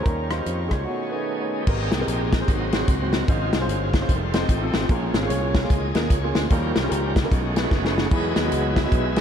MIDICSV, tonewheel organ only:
0, 0, Header, 1, 2, 480
1, 0, Start_track
1, 0, Key_signature, -4, "major"
1, 0, Tempo, 402685
1, 67, Time_signature, 4, 2, 24, 8
1, 10976, End_track
2, 0, Start_track
2, 0, Title_t, "Tonewheel organ"
2, 0, Program_c, 0, 16
2, 0, Note_on_c, 0, 58, 58
2, 0, Note_on_c, 0, 61, 58
2, 72, Note_on_c, 0, 55, 56
2, 72, Note_on_c, 0, 65, 71
2, 76, Note_on_c, 0, 51, 62
2, 1006, Note_off_c, 0, 58, 0
2, 1024, Note_off_c, 0, 55, 0
2, 1025, Note_off_c, 0, 65, 0
2, 1036, Note_on_c, 0, 57, 49
2, 1037, Note_on_c, 0, 59, 45
2, 1044, Note_on_c, 0, 68, 60
2, 1325, Note_off_c, 0, 61, 0
2, 1326, Note_off_c, 0, 68, 0
2, 1340, Note_on_c, 0, 61, 57
2, 1340, Note_on_c, 0, 68, 86
2, 1343, Note_on_c, 0, 63, 53
2, 1894, Note_off_c, 0, 68, 0
2, 1930, Note_on_c, 0, 67, 57
2, 1953, Note_off_c, 0, 61, 0
2, 1955, Note_off_c, 0, 63, 0
2, 1974, Note_off_c, 0, 67, 0
2, 1980, Note_off_c, 0, 51, 0
2, 1987, Note_off_c, 0, 57, 0
2, 1988, Note_off_c, 0, 59, 0
2, 1988, Note_on_c, 0, 67, 61
2, 1993, Note_on_c, 0, 58, 55
2, 1997, Note_on_c, 0, 68, 101
2, 2000, Note_on_c, 0, 60, 69
2, 2003, Note_on_c, 0, 63, 67
2, 2730, Note_off_c, 0, 67, 0
2, 2732, Note_off_c, 0, 58, 0
2, 2737, Note_off_c, 0, 60, 0
2, 2779, Note_on_c, 0, 70, 90
2, 2797, Note_off_c, 0, 68, 0
2, 2912, Note_off_c, 0, 63, 0
2, 2950, Note_on_c, 0, 54, 55
2, 2961, Note_on_c, 0, 58, 48
2, 2964, Note_off_c, 0, 70, 0
2, 2965, Note_on_c, 0, 60, 62
2, 2965, Note_on_c, 0, 75, 91
2, 2967, Note_on_c, 0, 72, 67
2, 2970, Note_on_c, 0, 66, 71
2, 3257, Note_on_c, 0, 73, 97
2, 3266, Note_off_c, 0, 75, 0
2, 3426, Note_off_c, 0, 72, 0
2, 3441, Note_on_c, 0, 72, 89
2, 3443, Note_off_c, 0, 73, 0
2, 3743, Note_off_c, 0, 72, 0
2, 3744, Note_on_c, 0, 70, 92
2, 3865, Note_off_c, 0, 54, 0
2, 3870, Note_off_c, 0, 58, 0
2, 3872, Note_off_c, 0, 60, 0
2, 3875, Note_off_c, 0, 66, 0
2, 3909, Note_off_c, 0, 70, 0
2, 3928, Note_on_c, 0, 51, 64
2, 3932, Note_on_c, 0, 53, 59
2, 3935, Note_on_c, 0, 65, 72
2, 3935, Note_on_c, 0, 68, 104
2, 3937, Note_on_c, 0, 60, 70
2, 4273, Note_off_c, 0, 51, 0
2, 4275, Note_off_c, 0, 53, 0
2, 4278, Note_off_c, 0, 60, 0
2, 4653, Note_off_c, 0, 68, 0
2, 4703, Note_on_c, 0, 67, 91
2, 4836, Note_off_c, 0, 65, 0
2, 4868, Note_off_c, 0, 67, 0
2, 4872, Note_on_c, 0, 51, 51
2, 4881, Note_on_c, 0, 55, 48
2, 4883, Note_on_c, 0, 65, 78
2, 4886, Note_on_c, 0, 57, 66
2, 4886, Note_on_c, 0, 60, 56
2, 5167, Note_off_c, 0, 60, 0
2, 5169, Note_on_c, 0, 67, 112
2, 5177, Note_on_c, 0, 63, 70
2, 5181, Note_on_c, 0, 60, 76
2, 5184, Note_off_c, 0, 65, 0
2, 5224, Note_off_c, 0, 51, 0
2, 5229, Note_off_c, 0, 55, 0
2, 5790, Note_off_c, 0, 63, 0
2, 5792, Note_off_c, 0, 60, 0
2, 5793, Note_off_c, 0, 57, 0
2, 5847, Note_on_c, 0, 61, 82
2, 5848, Note_on_c, 0, 68, 104
2, 5852, Note_off_c, 0, 67, 0
2, 5854, Note_on_c, 0, 65, 80
2, 6124, Note_on_c, 0, 49, 62
2, 6134, Note_on_c, 0, 56, 62
2, 6140, Note_on_c, 0, 60, 72
2, 6413, Note_off_c, 0, 49, 0
2, 6419, Note_off_c, 0, 56, 0
2, 6422, Note_off_c, 0, 60, 0
2, 6622, Note_on_c, 0, 70, 92
2, 6640, Note_off_c, 0, 68, 0
2, 6672, Note_off_c, 0, 70, 0
2, 6742, Note_on_c, 0, 74, 91
2, 6752, Note_off_c, 0, 61, 0
2, 6755, Note_off_c, 0, 65, 0
2, 6799, Note_off_c, 0, 74, 0
2, 6810, Note_on_c, 0, 75, 97
2, 6819, Note_on_c, 0, 68, 68
2, 7291, Note_on_c, 0, 73, 103
2, 7295, Note_off_c, 0, 75, 0
2, 7587, Note_off_c, 0, 73, 0
2, 7596, Note_on_c, 0, 72, 101
2, 7717, Note_off_c, 0, 68, 0
2, 7760, Note_on_c, 0, 53, 66
2, 7766, Note_on_c, 0, 55, 58
2, 7768, Note_on_c, 0, 70, 106
2, 7770, Note_off_c, 0, 72, 0
2, 7770, Note_on_c, 0, 67, 82
2, 7772, Note_on_c, 0, 61, 77
2, 8493, Note_off_c, 0, 53, 0
2, 8496, Note_off_c, 0, 55, 0
2, 8501, Note_off_c, 0, 61, 0
2, 8546, Note_on_c, 0, 68, 94
2, 8559, Note_off_c, 0, 70, 0
2, 8672, Note_off_c, 0, 67, 0
2, 8723, Note_on_c, 0, 56, 51
2, 8724, Note_off_c, 0, 68, 0
2, 8728, Note_on_c, 0, 57, 64
2, 8734, Note_on_c, 0, 61, 52
2, 8735, Note_on_c, 0, 66, 91
2, 8736, Note_on_c, 0, 63, 69
2, 8999, Note_off_c, 0, 66, 0
2, 9019, Note_off_c, 0, 63, 0
2, 9030, Note_on_c, 0, 71, 114
2, 9033, Note_on_c, 0, 63, 71
2, 9034, Note_on_c, 0, 66, 79
2, 9465, Note_off_c, 0, 71, 0
2, 9627, Note_off_c, 0, 56, 0
2, 9633, Note_off_c, 0, 61, 0
2, 9635, Note_off_c, 0, 57, 0
2, 9636, Note_off_c, 0, 63, 0
2, 9637, Note_off_c, 0, 66, 0
2, 9675, Note_on_c, 0, 54, 64
2, 9682, Note_on_c, 0, 56, 59
2, 9688, Note_on_c, 0, 68, 78
2, 9689, Note_on_c, 0, 75, 119
2, 9690, Note_on_c, 0, 64, 66
2, 9692, Note_on_c, 0, 71, 86
2, 10125, Note_off_c, 0, 75, 0
2, 10446, Note_off_c, 0, 71, 0
2, 10447, Note_off_c, 0, 68, 0
2, 10456, Note_on_c, 0, 76, 117
2, 10460, Note_on_c, 0, 71, 78
2, 10461, Note_on_c, 0, 68, 78
2, 10924, Note_on_c, 0, 75, 117
2, 10943, Note_off_c, 0, 76, 0
2, 10976, Note_off_c, 0, 54, 0
2, 10976, Note_off_c, 0, 56, 0
2, 10976, Note_off_c, 0, 64, 0
2, 10976, Note_off_c, 0, 68, 0
2, 10976, Note_off_c, 0, 71, 0
2, 10976, Note_off_c, 0, 75, 0
2, 10976, End_track
0, 0, End_of_file